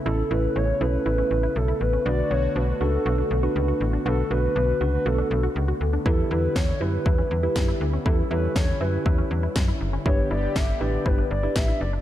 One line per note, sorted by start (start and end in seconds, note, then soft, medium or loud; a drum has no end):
0.00 2.02 C#3 medium
0.00 6.02 A3 medium
0.00 8.02 B3 medium
0.00 2.02 E4 medium
0.06 0.23 A1 loud
0.06 0.22 C#4 medium
0.06 0.21 E4 medium
0.06 0.22 E4 medium
0.06 0.22 A4 medium
0.06 0.33 A4 medium
0.31 0.48 A1 loud
0.31 0.63 C#4 medium
0.31 0.46 E4 medium
0.31 0.63 E4 medium
0.31 0.63 A4 medium
0.31 0.57 B4 medium
0.56 0.73 A1 loud
0.56 0.71 C#4 medium
0.56 0.83 C#5 loud
0.81 0.98 B1 loud
0.81 1.45 C#4 medium
0.81 0.96 E4 medium
0.81 1.45 E4 medium
0.81 1.45 A4 medium
0.81 1.58 B4 medium
1.06 1.23 A1 medium
1.06 1.13 E4 medium
1.18 1.33 C#4 medium
1.31 1.48 A1 medium
1.43 1.58 E4 medium
1.56 1.73 B1 medium
1.56 1.82 A4 medium
1.68 1.83 E4 medium
1.81 1.98 A1 medium
1.81 2.05 B4 medium
1.93 2.01 C#4 medium
2.06 2.23 B1 loud
2.06 10.02 D3 medium
2.06 2.54 D4 medium
2.06 2.21 F#4 medium
2.06 6.02 F#4 medium
2.06 2.54 F#4 medium
2.06 2.54 B4 medium
2.06 2.32 D5 loud
2.31 2.48 B1 loud
2.31 2.46 F#4 medium
2.31 2.57 C#5 loud
2.56 2.73 B1 medium
2.56 2.71 D4 medium
2.56 2.80 B4 medium
2.81 2.98 C#2 medium
2.81 3.21 D4 medium
2.81 3.21 F#4 medium
2.81 2.96 F#4 medium
2.81 3.77 A4 medium
2.81 3.21 B4 medium
3.06 3.23 B1 loud
3.06 3.13 F#4 medium
3.18 3.33 D4 medium
3.31 3.48 B1 loud
3.43 3.83 D4 medium
3.43 3.58 F#4 medium
3.43 3.83 F#4 medium
3.43 3.83 B4 medium
3.56 3.73 C#2 loud
3.68 3.83 F#4 medium
3.81 3.98 A1 loud
3.93 4.01 D4 medium
4.06 4.23 B1 loud
4.06 4.22 D4 medium
4.06 4.21 F#4 medium
4.06 4.22 F#4 medium
4.06 4.32 A4 loud
4.06 4.22 B4 medium
4.31 4.48 B1 loud
4.31 4.63 D4 medium
4.31 4.46 F#4 medium
4.31 4.63 F#4 medium
4.31 4.63 B4 medium
4.31 4.93 B4 loud
4.56 4.73 B1 loud
4.56 4.71 D4 medium
4.81 4.98 C#2 medium
4.81 5.45 D4 medium
4.81 5.45 F#4 medium
4.81 4.96 F#4 medium
4.81 5.45 B4 medium
4.93 5.07 B4 loud
5.06 5.23 B1 loud
5.06 5.13 F#4 medium
5.06 5.81 A4 medium
5.18 5.33 D4 medium
5.31 5.48 B1 loud
5.43 5.58 F#4 medium
5.56 5.73 C#2 loud
5.68 5.83 F#4 medium
5.81 5.98 D2 medium
5.93 6.01 D4 medium
6.06 6.23 E2 loud
6.06 12.01 G3 medium
6.06 6.54 E4 medium
6.06 6.21 E4 loud
6.06 10.02 E4 medium
6.06 6.54 G4 medium
6.06 6.32 A4 medium
6.06 6.54 B4 medium
6.06 kick loud
6.31 6.48 E2 loud
6.31 6.46 E4 medium
6.31 6.57 B4 medium
6.56 6.73 E2 loud
6.56 6.71 D4 medium
6.56 6.82 C#5 loud
6.56 kick loud
6.56 snare loud
6.81 6.98 F#2 medium
6.81 7.21 E4 medium
6.81 6.96 E4 medium
6.81 7.21 G4 medium
6.81 7.21 B4 medium
6.81 7.56 B4 medium
7.06 7.23 E2 medium
7.06 7.13 E4 medium
7.06 kick loud
7.18 7.33 C#4 medium
7.31 7.48 E2 loud
7.43 7.83 E4 medium
7.43 7.58 E4 medium
7.43 7.83 G4 medium
7.43 7.83 B4 medium
7.56 7.73 F#2 medium
7.56 kick loud
7.56 snare loud
7.68 7.83 E4 medium
7.81 7.98 D2 medium
7.93 8.01 C#4 medium
8.06 8.23 E2 loud
8.06 10.04 C#4 medium
8.06 8.22 E4 medium
8.06 8.21 E4 loud
8.06 8.22 G4 medium
8.06 8.17 A4 medium
8.06 8.22 B4 medium
8.06 kick loud
8.31 8.48 E2 loud
8.31 8.46 E4 medium
8.31 8.63 E4 medium
8.31 8.63 G4 medium
8.31 8.63 A4 medium
8.31 8.54 B4 medium
8.56 8.73 E2 loud
8.56 8.71 D4 medium
8.56 8.82 C#5 loud
8.56 kick loud
8.56 snare loud
8.81 8.98 F#2 medium
8.81 8.96 E4 medium
8.81 9.45 E4 medium
8.81 9.45 G4 medium
8.81 9.56 B4 medium
8.81 9.45 B4 medium
9.06 9.23 E2 medium
9.06 9.13 E4 medium
9.06 kick loud
9.18 9.33 C#4 medium
9.31 9.48 E2 loud
9.43 9.58 E4 medium
9.56 9.73 F#2 medium
9.56 kick loud
9.56 snare loud
9.68 9.83 E4 medium
9.81 9.98 F#1 medium
9.93 10.01 C#4 medium
10.06 10.23 G1 loud
10.06 12.01 D3 medium
10.06 12.01 B3 medium
10.06 10.54 D4 medium
10.06 10.21 E4 loud
10.06 12.01 G4 medium
10.06 10.54 G4 medium
10.06 10.54 B4 medium
10.06 10.29 C#5 loud
10.06 kick loud
10.31 10.48 G1 medium
10.31 10.46 E4 medium
10.31 10.57 D5 loud
10.56 10.73 G1 loud
10.56 10.71 D4 medium
10.56 10.80 E5 loud
10.56 kick loud
10.56 snare loud
10.81 10.98 A1 medium
10.81 11.21 D4 medium
10.81 10.96 E4 medium
10.81 11.21 G4 medium
10.81 11.21 B4 medium
10.81 11.07 D5 loud
11.06 11.23 G1 loud
11.06 11.13 E4 medium
11.06 11.30 B4 loud
11.06 kick loud
11.18 11.33 D4 medium
11.31 11.48 G1 loud
11.31 11.58 D5 loud
11.43 11.83 D4 medium
11.43 11.58 E4 medium
11.43 11.83 G4 medium
11.43 11.83 B4 medium
11.56 11.73 A1 loud
11.56 11.80 E5 loud
11.56 kick loud
11.56 snare loud
11.68 11.83 E4 medium
11.81 11.98 F#1 loud
11.81 11.92 D5 medium
11.93 12.01 D4 medium